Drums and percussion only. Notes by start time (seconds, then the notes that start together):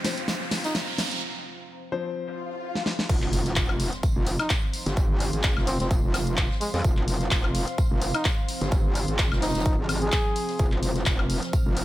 0.04 snare, open hi-hat, tambourine
0.16 snare, closed hi-hat
0.28 snare, closed hi-hat, tambourine
0.41 snare
0.51 snare, open hi-hat, tambourine
0.64 snare, closed hi-hat, tambourine
0.75 snare, closed hi-hat, tambourine
0.98 snare, open hi-hat, tambourine
1.11 closed hi-hat
2.75 snare
2.86 snare
2.99 snare
3.09 kick, closed hi-hat, crash, tambourine
3.22 clap
3.33 open hi-hat, tambourine
3.46 snare, closed hi-hat
3.56 kick, snare, clap, closed hi-hat, tambourine
3.69 high woodblock
3.80 open hi-hat, tambourine
3.92 snare, closed hi-hat
4.03 kick, closed hi-hat, tambourine
4.26 open hi-hat, tambourine
4.39 snare, closed hi-hat, high woodblock
4.50 kick, snare, clap, closed hi-hat, tambourine
4.74 open hi-hat, tambourine
4.86 snare, closed hi-hat
4.97 kick, closed hi-hat, tambourine
5.20 open hi-hat, tambourine
5.33 closed hi-hat
5.43 kick, snare, clap, closed hi-hat, tambourine
5.57 snare, high woodblock
5.67 open hi-hat, tambourine
5.80 snare, closed hi-hat
5.91 kick, closed hi-hat, tambourine
6.14 snare, open hi-hat, tambourine, high woodblock
6.27 closed hi-hat
6.37 kick, clap, closed hi-hat, tambourine
6.51 snare
6.61 open hi-hat, tambourine
6.74 snare, open hi-hat
6.84 kick, closed hi-hat, tambourine
6.97 clap
7.08 open hi-hat, tambourine
7.21 snare, closed hi-hat
7.31 kick, snare, clap, closed hi-hat, tambourine
7.44 high woodblock
7.55 open hi-hat, tambourine
7.67 snare, closed hi-hat
7.78 kick, closed hi-hat, tambourine
8.02 open hi-hat, tambourine
8.14 snare, closed hi-hat, high woodblock
8.25 kick, snare, clap, closed hi-hat, tambourine
8.48 open hi-hat, tambourine
8.61 snare, closed hi-hat
8.72 kick, closed hi-hat, tambourine
8.95 open hi-hat, tambourine
9.08 closed hi-hat
9.18 kick, snare, clap, closed hi-hat, tambourine
9.32 snare, high woodblock
9.42 snare, open hi-hat, tambourine
9.49 snare, tambourine
9.55 snare, closed hi-hat, tambourine
9.60 snare, tambourine
9.66 kick, closed hi-hat
9.89 open hi-hat, tambourine, high woodblock
10.02 closed hi-hat
10.12 kick, snare, clap, closed hi-hat, tambourine
10.36 open hi-hat, tambourine
10.49 snare, open hi-hat
10.59 kick, closed hi-hat, tambourine
10.72 clap
10.82 open hi-hat, tambourine
10.96 snare, closed hi-hat
11.06 kick, snare, clap, closed hi-hat, tambourine
11.19 high woodblock
11.30 open hi-hat, tambourine
11.43 snare, closed hi-hat
11.53 kick, closed hi-hat, tambourine
11.77 open hi-hat, tambourine